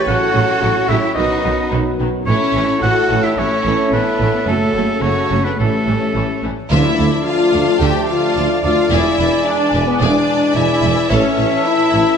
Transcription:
Already playing: trombone section A2, french horn section A3, trumpet C#5
0.07 double bass section A1, viola section C#3 F#3, trombone section F#3, violin section A3 C#4 A4, french horn section C#4, cello section F#4, oboe F#5
0.34 double bass section A1, viola section C#3 F#3, violin section A3 C#4
0.61 double bass section A1, viola section C#3 F#3, violin section A3 C#4
0.88 double bass section A1, viola section C#3 F#3, violin section A3 C#4 G4, cello section E4, oboe E5
1.15 double bass section B1, trombone section F#2, viola section D#3 F#3, french horn section B3 F#4, violin section B3 F#4, cello section D#4, trumpet B4, oboe D#5
1.44 double bass section B1, viola section D#3 F#3, violin section B3
1.71 double bass section B1, viola section D#3 F#3, violin section B3
1.99 double bass section B1, viola section D#3 F#3, violin section B3
2.26 double bass section A1, trombone section A2 A3, viola section E3 A3, violin section A3 C#4 E4, cello section C#4, french horn section E4 C#5, trumpet A4, oboe C#5
2.53 double bass section A1, viola section E3 A3, violin section A3 C#4
2.80 double bass section A1, viola section E3 A3, violin section A3 C#4 A4, cello section F#4, oboe F#5
3.08 double bass section A1, viola section E3 A3, violin section A3 C#4
3.23 cello section E4, violin section G4, oboe E5
3.36 double bass section A1, viola section E3 A3, violin section A3 C#4 E4, cello section C#4, oboe C#5
3.64 double bass section A1, viola section E3 A3, violin section A3 C#4
3.92 double bass section A1, viola section E3 A3, violin section A3 C#4 D4, cello section B3, oboe B4
4.20 double bass section A1, viola section E3 A3, violin section A3 C#4
4.47 double bass section F#1, trombone section C#3, viola section F#3 A3, violin section A3 C#4, cello section A3, french horn section F#4, oboe A4
4.74 double bass section F#1, viola section F#3 A3, violin section A3 C#4
5.01 double bass section F#1, viola section F#3 A3, violin section A3 C#4 F#4, cello section C#4, oboe C#5
5.30 double bass section F#1, viola section F#3 A3, violin section A3 C#4
5.44 cello section B3, violin section D4, oboe B4
5.58 double bass section A1, trombone section E3, viola section E3 G3, violin section A3 C#4, cello section A3, french horn section G4, oboe A4
5.87 double bass section A1, viola section E3 G3, violin section A3 C#4
6.14 double bass section A1, viola section E3 G3, violin section A3 C#4
6.43 double bass section A1, viola section E3 G3, violin section A3 C#4
6.70 cello section D2, double bass section D2, tuba D2, timpani D3, trombone section F3 A3, french horn section E4, viola section E4, violin section F4 E5, trumpet D5, oboe D5, flute section A5
6.98 cello section D2, tuba D2, double bass section D2, violin section A4 F5
7.25 french horn section F4, viola section F4, violin section F5
7.54 tuba D2, cello section D2, double bass section D2, violin section A4 F5
7.79 tuba D2, double bass section D2, cello section D2, violin section F4 E5 G5, french horn section G4, viola section G4
8.06 french horn section F4, violin section F5
8.10 viola section F4
8.36 double bass section D2, tuba D2, cello section D2, violin section D5 A5
8.63 double bass section D2, tuba D2, cello section D2, french horn section F4, viola section F4, violin section A4 F5
8.89 double bass section E1, tuba E1, cello section E2, trombone section E3 G#3, french horn section E4, viola section E4, violin section G#4 D5 E5
8.94 flute section G#5
9.18 double bass section E1, tuba E1, cello section E2, violin section B4 E5
9.44 french horn section D4, violin section D5
9.48 viola section D4
9.73 double bass section E1, tuba E1, cello section E2, violin section B4 E5
9.85 french horn section B3, viola section B3, violin section B4
9.99 double bass section E1, tuba E1, cello section E2, french horn section D4, viola section D4, violin section G#4 D5
10.54 double bass section E1, tuba E1, cello section E2, french horn section E4, viola section E4, violin section D5 E5 G#5
10.83 double bass section E1, tuba E1, cello section E2, violin section B4 E5
11.10 double bass section A1, tuba A1, cello section A2, trombone section A3, french horn section C#4, viola section C#4, violin section A4 C#5, oboe E5, trumpet E5, flute section A5
11.38 double bass section A1, tuba A1, cello section A2, violin section C#5 E5
11.65 french horn section E4, viola section E4, violin section E5
11.93 double bass section A1, tuba A1, cello section A2, violin section C#5 E5

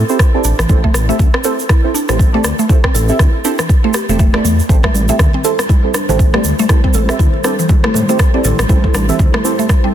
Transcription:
0.09 synth stab C4 E4 G4 A4 C5, shaker
0.19 synth pluck E4, kick, cross-stick, shaker
0.34 synth stab C4 E4 G4 A4 D5
0.44 detuned saw bass A1, synth pluck D4, shaker
0.59 detuned saw bass A1, synth pluck E3, cross-stick, shaker
0.69 detuned saw bass A1, synth stab C4 E4 G4 A4 C5, kick, shaker
0.84 synth pluck A3, kick
0.94 detuned saw bass A1, cross-stick, shaker
1.09 synth pluck A3, synth stab C4 E4 G4 A4 E5, shaker
1.19 detuned saw bass D2, kick, shaker
1.34 synth pluck C4, cross-stick
1.44 synth stab C4 E4 G4 A4 C5, synth pluck A4, shaker
1.59 shaker
1.69 synth pluck E4, kick, cross-stick, shaker
1.84 synth stab C4 E4 G4 A4 C5
1.94 synth pluck D4, shaker
2.09 detuned saw bass A1, synth pluck E3, synth stab C4 E4 G4 A4 C5, cross-stick, shaker
2.19 kick, shaker
2.34 synth pluck A3, synth stab C4 E4 G4 A4 D5
2.44 detuned saw bass D2, cross-stick, shaker
2.59 synth pluck A3, shaker
2.69 synth stab C4 E4 G4 A4 C5, kick, shaker
2.84 synth pluck C4, kick, cross-stick
2.94 detuned saw bass A1, synth pluck A4, shaker
3.08 synth stab C4 E4 G4 A4 E5, shaker
3.19 detuned saw bass D2, synth pluck E4, kick, cross-stick, shaker
3.44 synth stab C4 E4 G4 A4 C5, synth pluck D4, shaker
3.59 synth pluck E3, cross-stick, shaker
3.69 kick, shaker
3.84 synth pluck A3, synth stab C4 E4 G4 A4 C5
3.94 synth pluck G4, cross-stick, shaker
4.09 detuned saw bass E1, synth pluck A3, synth stab C4 E4 G4 A4 C5, shaker
4.19 synth pluck A3, kick, shaker
4.34 synth pluck A3, synth stab C4 E4 G4 A4 D5, cross-stick
4.44 detuned saw bass E2, synth pluck A3, shaker
4.59 shaker
4.69 detuned saw bass A1, analog synth pad G3 E4 A4 C5, synth stab C4 E4 G4 A4 C5, kick, shaker
4.83 synth pluck A3, kick, cross-stick, muted conga
4.94 detuned saw bass A1, high conga, shaker
5.08 synth pluck A3, synth stab C4 E4 G4 A4 E5, muted conga, shaker
5.19 detuned saw bass D2, kick, cross-stick, low conga, shaker
5.33 synth pluck C4, muted conga
5.44 synth stab C4 E4 G4 A4 C5, synth pluck A4, shaker
5.59 cross-stick, muted conga, shaker
5.69 synth pluck E4, kick, high conga, shaker
5.84 synth stab C4 E4 G4 A4 C5
5.94 synth pluck D4, cross-stick, muted conga, shaker
6.09 detuned saw bass A1, synth pluck E3, synth stab C4 E4 G4 A4 C5, high conga, low conga, shaker
6.19 kick, muted conga, shaker
6.34 synth pluck A3, synth stab C4 E4 G4 A4 D5, cross-stick, high conga
6.44 detuned saw bass D2, muted conga, shaker
6.59 synth pluck A3, high conga, shaker
6.69 synth stab C4 E4 G4 A4 C5, kick, cross-stick, shaker
6.84 synth pluck C4, kick, muted conga
6.94 detuned saw bass A1, synth pluck A4, high conga, shaker
7.09 synth stab C4 E4 G4 A4 E5, cross-stick, muted conga, shaker
7.19 detuned saw bass D2, synth pluck E4, kick, low conga, shaker
7.34 muted conga
7.44 synth stab C4 E4 G4 A4 C5, synth pluck D4, cross-stick, shaker
7.59 synth pluck E3, muted conga, shaker
7.69 kick, high conga, low conga, shaker
7.84 synth pluck A3, synth stab C4 E4 G4 A4 C5, cross-stick
7.94 detuned saw bass A2, muted conga, high conga, low conga, shaker
8.09 synth pluck A3, synth stab C4 E4 G4 A4 C5, shaker
8.19 kick, cross-stick, muted conga, shaker
8.34 synth pluck C4, synth stab C4 E4 G4 A4 D5
8.44 detuned saw bass A1, synth pluck A4, muted conga, low conga, shaker
8.59 detuned saw bass A1, cross-stick, high conga, shaker
8.69 detuned saw bass A1, synth stab C4 E4 G4 A4 C5, synth pluck E4, kick, shaker
8.84 kick, muted conga
8.94 detuned saw bass A1, synth pluck D4, cross-stick, high conga, shaker
9.09 synth pluck E3, synth stab C4 E4 G4 A4 E5, muted conga, shaker
9.19 detuned saw bass D2, kick, low conga, shaker
9.34 synth pluck A3, cross-stick, muted conga
9.44 synth stab C4 E4 G4 A4 C5, shaker
9.59 synth pluck A3, muted conga, shaker
9.69 kick, cross-stick, high conga, shaker
9.84 synth pluck C4, synth stab C4 E4 G4 A4 C5

